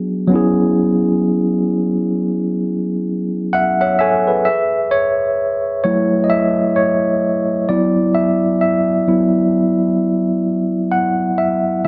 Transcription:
0.00 0.25 F#3 medium
0.00 0.26 B3 medium
0.00 0.27 D4 medium
0.00 0.28 F#4 medium
0.00 0.29 G#4 medium
0.27 3.95 F#3 medium
0.27 3.96 B3 medium
0.32 3.97 C#4 medium
0.32 3.98 E4 medium
0.32 3.06 G#4 medium
3.53 3.79 E5 medium
3.53 3.80 F#5 loud
3.81 3.99 C#5 medium
3.81 3.98 E5 medium
3.81 3.99 F#5 medium
3.99 4.26 A4 medium
3.99 4.26 C#5 medium
3.99 4.44 E5 medium
3.99 4.43 G#5 medium
4.27 4.71 G#4 medium
4.27 4.71 B4 medium
4.45 4.66 E5 medium
4.91 5.82 C#5 medium
5.84 6.49 F#3 medium
5.84 6.49 A3 medium
5.84 6.50 E4 medium
5.84 6.26 C#5 medium
6.24 6.31 D#5 medium
6.30 6.78 E5 loud
6.76 7.72 C#5 medium
7.69 8.34 F#3 medium
7.69 8.34 B3 soft
7.69 8.34 E4 medium
7.69 8.17 D5 medium
8.15 8.60 E5 medium
8.61 10.42 E5 medium
9.08 9.50 F#3 medium
9.08 9.50 B3 soft
9.08 9.51 E4 medium
10.92 11.40 F#5 medium
11.38 11.59 E5 medium
11.85 11.88 E5 medium

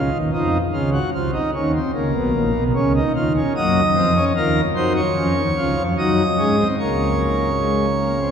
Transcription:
0.00 0.18 F4 medium
0.13 0.30 D#2 medium
0.13 0.30 D#3 medium
0.33 0.58 F2 medium
0.33 0.58 F3 medium
0.33 0.58 D#4 medium
0.73 0.98 C#2 medium
0.73 0.98 C#3 medium
0.73 0.90 F4 medium
0.93 1.10 F#4 medium
1.13 1.38 C2 medium
1.13 1.39 C3 medium
1.13 1.31 F4 medium
1.33 1.51 D#4 medium
1.54 1.79 D#2 medium
1.54 1.79 D#3 medium
1.54 1.71 C#4 medium
1.74 1.91 C4 medium
1.94 2.11 C#2 medium
1.94 2.11 C#3 medium
1.94 2.64 A#3 medium
2.14 2.32 B1 medium
2.14 2.32 B2 medium
2.34 2.52 A#1 medium
2.34 2.52 A#2 medium
2.55 2.72 B1 medium
2.55 2.72 B2 medium
2.75 3.00 C#2 medium
2.75 3.00 C#3 medium
2.75 2.92 C#4 medium
2.95 3.12 D#4 medium
3.15 3.40 D#2 medium
3.15 3.40 D#3 medium
3.15 3.33 F4 medium
3.36 3.53 C#4 medium
3.56 3.81 F#2 medium
3.56 3.80 F#3 loud
3.56 3.81 A#3 medium
3.56 4.25 D#5 medium
3.95 4.20 F2 medium
3.95 4.20 F3 medium
3.95 4.13 C4 medium
4.15 4.33 C#4 medium
4.35 4.60 D#2 medium
4.35 4.60 D#3 medium
4.35 4.60 F4 medium
4.35 4.61 A#4 medium
4.76 5.01 F#2 medium
4.76 5.01 F#3 medium
4.76 5.01 D#4 medium
4.76 4.93 C5 medium
4.96 5.83 C#5 medium
5.16 5.33 F2 medium
5.16 5.33 F3 medium
5.16 5.41 C#4 medium
5.36 5.54 D#2 medium
5.36 5.54 D#3 medium
5.57 5.74 C#2 medium
5.57 5.74 C#3 medium
5.57 5.82 F4 medium
5.77 5.94 F2 medium
5.77 5.94 F3 medium
5.98 6.23 F#2 medium
5.98 6.23 F#3 medium
5.98 6.23 D#4 medium
5.98 6.68 D#5 medium
6.39 6.63 G#2 medium
6.39 6.64 G#3 medium
6.39 6.56 C#4 medium
6.58 6.76 C4 medium
6.79 8.31 C#2 medium
6.79 8.31 C#3 medium
6.79 7.49 A#3 medium
6.79 8.31 C#5 medium
7.60 7.86 G#3 medium
8.01 8.18 A#3 soft
8.21 8.31 C4 soft

